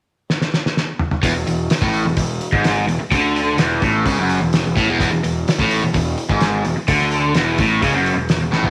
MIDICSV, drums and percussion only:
0, 0, Header, 1, 2, 480
1, 0, Start_track
1, 0, Tempo, 470958
1, 1253, Time_signature, 4, 2, 24, 8
1, 8867, End_track
2, 0, Start_track
2, 0, Title_t, "Drums"
2, 304, Note_on_c, 9, 38, 66
2, 406, Note_off_c, 9, 38, 0
2, 424, Note_on_c, 9, 38, 66
2, 525, Note_off_c, 9, 38, 0
2, 547, Note_on_c, 9, 38, 65
2, 649, Note_off_c, 9, 38, 0
2, 675, Note_on_c, 9, 38, 71
2, 776, Note_off_c, 9, 38, 0
2, 787, Note_on_c, 9, 38, 76
2, 889, Note_off_c, 9, 38, 0
2, 1014, Note_on_c, 9, 45, 85
2, 1116, Note_off_c, 9, 45, 0
2, 1135, Note_on_c, 9, 45, 83
2, 1237, Note_off_c, 9, 45, 0
2, 1254, Note_on_c, 9, 36, 91
2, 1258, Note_on_c, 9, 46, 65
2, 1356, Note_off_c, 9, 36, 0
2, 1360, Note_off_c, 9, 46, 0
2, 1501, Note_on_c, 9, 46, 55
2, 1603, Note_off_c, 9, 46, 0
2, 1734, Note_on_c, 9, 46, 71
2, 1743, Note_on_c, 9, 38, 102
2, 1836, Note_off_c, 9, 46, 0
2, 1845, Note_off_c, 9, 38, 0
2, 1853, Note_on_c, 9, 36, 93
2, 1955, Note_off_c, 9, 36, 0
2, 1977, Note_on_c, 9, 46, 53
2, 2079, Note_off_c, 9, 46, 0
2, 2209, Note_on_c, 9, 46, 71
2, 2212, Note_on_c, 9, 36, 83
2, 2311, Note_off_c, 9, 46, 0
2, 2314, Note_off_c, 9, 36, 0
2, 2457, Note_on_c, 9, 46, 53
2, 2558, Note_off_c, 9, 46, 0
2, 2574, Note_on_c, 9, 36, 96
2, 2676, Note_off_c, 9, 36, 0
2, 2695, Note_on_c, 9, 46, 67
2, 2704, Note_on_c, 9, 38, 96
2, 2797, Note_off_c, 9, 46, 0
2, 2806, Note_off_c, 9, 38, 0
2, 2941, Note_on_c, 9, 46, 50
2, 3043, Note_off_c, 9, 46, 0
2, 3177, Note_on_c, 9, 36, 95
2, 3180, Note_on_c, 9, 46, 62
2, 3278, Note_off_c, 9, 36, 0
2, 3282, Note_off_c, 9, 46, 0
2, 3427, Note_on_c, 9, 46, 48
2, 3528, Note_off_c, 9, 46, 0
2, 3651, Note_on_c, 9, 46, 65
2, 3660, Note_on_c, 9, 38, 106
2, 3753, Note_off_c, 9, 46, 0
2, 3762, Note_off_c, 9, 38, 0
2, 3893, Note_on_c, 9, 46, 49
2, 3895, Note_on_c, 9, 36, 100
2, 3995, Note_off_c, 9, 46, 0
2, 3997, Note_off_c, 9, 36, 0
2, 4133, Note_on_c, 9, 46, 67
2, 4135, Note_on_c, 9, 36, 94
2, 4235, Note_off_c, 9, 46, 0
2, 4237, Note_off_c, 9, 36, 0
2, 4377, Note_on_c, 9, 46, 48
2, 4478, Note_off_c, 9, 46, 0
2, 4615, Note_on_c, 9, 46, 64
2, 4624, Note_on_c, 9, 38, 92
2, 4717, Note_off_c, 9, 46, 0
2, 4726, Note_off_c, 9, 38, 0
2, 4859, Note_on_c, 9, 36, 95
2, 4863, Note_on_c, 9, 46, 47
2, 4961, Note_off_c, 9, 36, 0
2, 4965, Note_off_c, 9, 46, 0
2, 5098, Note_on_c, 9, 36, 89
2, 5102, Note_on_c, 9, 46, 62
2, 5200, Note_off_c, 9, 36, 0
2, 5204, Note_off_c, 9, 46, 0
2, 5342, Note_on_c, 9, 46, 52
2, 5444, Note_off_c, 9, 46, 0
2, 5583, Note_on_c, 9, 46, 71
2, 5592, Note_on_c, 9, 38, 103
2, 5685, Note_off_c, 9, 46, 0
2, 5694, Note_off_c, 9, 38, 0
2, 5699, Note_on_c, 9, 36, 97
2, 5801, Note_off_c, 9, 36, 0
2, 5818, Note_on_c, 9, 46, 54
2, 5920, Note_off_c, 9, 46, 0
2, 6057, Note_on_c, 9, 46, 75
2, 6059, Note_on_c, 9, 36, 80
2, 6159, Note_off_c, 9, 46, 0
2, 6161, Note_off_c, 9, 36, 0
2, 6295, Note_on_c, 9, 46, 52
2, 6397, Note_off_c, 9, 46, 0
2, 6415, Note_on_c, 9, 36, 89
2, 6517, Note_off_c, 9, 36, 0
2, 6529, Note_on_c, 9, 46, 66
2, 6538, Note_on_c, 9, 38, 101
2, 6631, Note_off_c, 9, 46, 0
2, 6640, Note_off_c, 9, 38, 0
2, 6774, Note_on_c, 9, 46, 54
2, 6876, Note_off_c, 9, 46, 0
2, 7011, Note_on_c, 9, 46, 67
2, 7015, Note_on_c, 9, 36, 90
2, 7113, Note_off_c, 9, 46, 0
2, 7117, Note_off_c, 9, 36, 0
2, 7144, Note_on_c, 9, 38, 28
2, 7245, Note_off_c, 9, 38, 0
2, 7251, Note_on_c, 9, 46, 55
2, 7353, Note_off_c, 9, 46, 0
2, 7487, Note_on_c, 9, 46, 68
2, 7496, Note_on_c, 9, 38, 105
2, 7588, Note_off_c, 9, 46, 0
2, 7598, Note_off_c, 9, 38, 0
2, 7726, Note_on_c, 9, 46, 50
2, 7733, Note_on_c, 9, 36, 99
2, 7828, Note_off_c, 9, 46, 0
2, 7835, Note_off_c, 9, 36, 0
2, 7974, Note_on_c, 9, 46, 65
2, 7975, Note_on_c, 9, 36, 97
2, 8076, Note_off_c, 9, 46, 0
2, 8077, Note_off_c, 9, 36, 0
2, 8216, Note_on_c, 9, 46, 47
2, 8317, Note_off_c, 9, 46, 0
2, 8448, Note_on_c, 9, 46, 62
2, 8457, Note_on_c, 9, 38, 99
2, 8549, Note_off_c, 9, 46, 0
2, 8559, Note_off_c, 9, 38, 0
2, 8694, Note_on_c, 9, 38, 54
2, 8796, Note_off_c, 9, 38, 0
2, 8805, Note_on_c, 9, 43, 70
2, 8867, Note_off_c, 9, 43, 0
2, 8867, End_track
0, 0, End_of_file